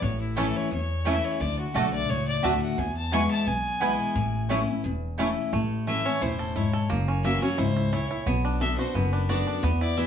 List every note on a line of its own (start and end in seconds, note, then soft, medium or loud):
0.02 0.49 A1 loud
0.02 0.68 A2 medium
0.02 0.20 C#5 medium
0.21 0.39 E4 soft
0.36 0.70 E3 loud
0.36 0.46 A3 medium
0.36 0.45 A3 medium
0.36 0.70 A3 medium
0.36 0.45 C#4 medium
0.36 0.70 C#4 medium
0.36 0.46 E4 medium
0.36 0.45 E4 medium
0.36 0.71 E4 loud
0.36 0.57 A4 medium
0.36 0.46 C#5 medium
0.36 0.46 A5 loud
0.56 0.72 C#5 medium
0.71 1.18 E2 medium
0.71 1.37 E2 medium
0.71 1.08 C#5 medium
1.05 1.38 E3 medium
1.05 1.15 A3 loud
1.05 1.39 A3 medium
1.05 1.14 A3 medium
1.05 1.39 C#4 loud
1.05 1.14 C#4 medium
1.05 1.15 E4 loud
1.05 1.14 E4 medium
1.05 1.39 E4 loud
1.05 1.15 C#5 loud
1.05 1.26 E5 loud
1.05 1.15 A5 medium
1.24 1.42 C#5 medium
1.40 1.64 D2 loud
1.40 1.73 D3 loud
1.40 1.59 D5 medium
1.59 1.76 F#4 soft
1.74 2.04 B1 medium
1.74 2.07 D3 medium
1.74 1.84 A3 medium
1.74 2.08 A3 medium
1.74 1.83 A3 medium
1.74 2.08 D4 medium
1.74 1.83 D4 medium
1.74 1.84 F#4 medium
1.74 1.83 F#4 medium
1.74 2.08 F#4 medium
1.74 1.93 A4 medium
1.74 1.84 D5 medium
1.74 1.84 A5 loud
1.93 2.11 D5 loud
2.09 2.38 C#2 medium
2.09 2.75 A2 medium
2.09 2.27 C#5 loud
2.28 2.46 D5 loud
2.43 2.73 D2 medium
2.43 2.76 D3 medium
2.43 2.53 A3 loud
2.43 2.76 A3 medium
2.43 2.52 A3 medium
2.43 2.77 D4 loud
2.43 2.52 D4 medium
2.43 2.53 F#4 loud
2.43 2.52 F#4 medium
2.43 2.77 F#4 loud
2.43 2.53 D5 loud
2.43 2.61 E5 medium
2.43 2.53 A5 loud
2.62 2.80 F#5 medium
2.78 3.25 E2 loud
2.78 3.44 E2 medium
2.78 2.96 G#5 medium
2.97 3.14 A5 medium
3.12 3.45 E3 medium
3.12 3.45 G#3 medium
3.12 3.21 B3 medium
3.12 3.46 B3 medium
3.12 3.22 E4 medium
3.12 3.16 E4 medium
3.12 3.46 E4 loud
3.12 3.22 B4 medium
3.12 3.22 G#5 loud
3.12 3.30 C#6 loud
3.31 3.48 A5 loud
3.47 3.94 B1 medium
3.47 4.12 B2 medium
3.47 4.50 G#5 loud
3.80 4.14 E3 loud
3.80 4.14 G#3 medium
3.80 3.90 B3 medium
3.80 3.89 B3 medium
3.80 4.14 B3 loud
3.80 3.91 E4 loud
3.80 3.84 E4 medium
3.80 4.15 E4 loud
3.80 3.91 B4 loud
3.80 3.91 G#5 loud
4.15 4.62 A1 loud
4.15 4.81 A2 loud
4.49 4.67 E3 medium
4.49 4.59 A3 medium
4.49 4.67 A3 loud
4.49 4.58 A3 medium
4.49 4.68 C#4 loud
4.49 4.58 C#4 medium
4.49 4.59 E4 medium
4.49 4.58 E4 medium
4.49 4.66 E4 loud
4.49 4.59 C#5 medium
4.49 4.59 A5 medium
4.67 4.85 C#4 soft
4.67 4.83 E4 medium
4.84 5.31 E1 medium
4.84 5.49 E2 loud
5.18 5.51 E3 medium
5.18 5.28 A3 loud
5.18 5.51 A3 medium
5.18 5.27 A3 medium
5.18 5.27 C#4 medium
5.18 5.52 C#4 medium
5.18 5.28 E4 medium
5.18 5.27 E4 medium
5.18 5.52 E4 medium
5.18 5.28 C#5 medium
5.18 5.28 A5 loud
5.53 5.99 A1 loud
5.53 6.18 A2 medium
5.53 5.86 A3 medium
5.87 6.04 E3 medium
5.87 6.36 A3 medium
5.87 6.05 A3 medium
5.87 6.05 C#4 loud
5.87 6.04 E4 medium
5.87 6.07 E5 loud
6.05 6.53 C#4 medium
6.05 6.22 C#4 soft
6.05 6.21 E4 medium
6.05 6.23 C#5 loud
6.21 6.68 E1 medium
6.21 6.54 A2 loud
6.21 6.54 E4 medium
6.21 6.57 C5 medium
6.39 6.72 A4 medium
6.56 6.88 G#2 loud
6.56 6.90 E4 medium
6.56 6.90 C#5 medium
6.73 6.90 A4 medium
6.90 7.36 F#1 loud
6.90 7.55 F#2 loud
6.90 7.23 A#3 medium
7.08 7.41 C#4 medium
7.23 7.41 E3 medium
7.23 7.41 A#3 medium
7.23 7.73 A#3 medium
7.23 7.42 C#4 loud
7.23 7.40 F#4 loud
7.23 7.41 E5 medium
7.42 7.89 C#4 medium
7.42 7.59 C#4 medium
7.42 7.57 F#4 medium
7.42 7.60 C#5 medium
7.58 8.05 C#2 medium
7.58 7.91 G#2 loud
7.58 7.75 E4 medium
7.58 7.94 C5 medium
7.76 7.92 E4 medium
7.92 8.25 A#2 medium
7.92 8.10 E4 medium
7.92 8.27 C#5 medium
8.11 8.27 E4 medium
8.26 8.73 B1 loud
8.26 8.92 B2 loud
8.26 8.95 B3 medium
8.45 8.92 D4 medium
8.60 8.78 D3 medium
8.60 8.78 B3 medium
8.60 8.79 D4 loud
8.60 8.77 F#4 loud
8.60 9.09 A4 medium
8.60 8.78 E5 loud
8.78 8.95 D4 soft
8.78 8.94 F#4 medium
8.78 9.26 F#4 medium
8.78 8.96 C5 loud
8.94 9.41 F#1 medium
8.94 9.60 F#2 loud
8.94 9.44 B3 medium
8.94 9.30 B4 loud
9.13 9.46 D4 medium
9.29 9.62 D3 medium
9.29 9.62 B3 medium
9.29 9.62 D4 loud
9.29 9.63 F#4 medium
9.29 9.63 F#4 loud
9.29 9.63 D5 medium
9.47 9.63 D4 soft
9.63 10.07 E2 medium
9.63 10.07 E2 loud
9.63 10.07 B3 medium
9.81 9.97 E4 medium
9.81 9.99 D5 medium
9.97 10.07 E3 medium
9.97 10.07 G#3 loud
9.97 10.07 B3 loud
9.97 10.07 E4 medium
9.97 10.07 E4 loud
9.97 10.07 E5 medium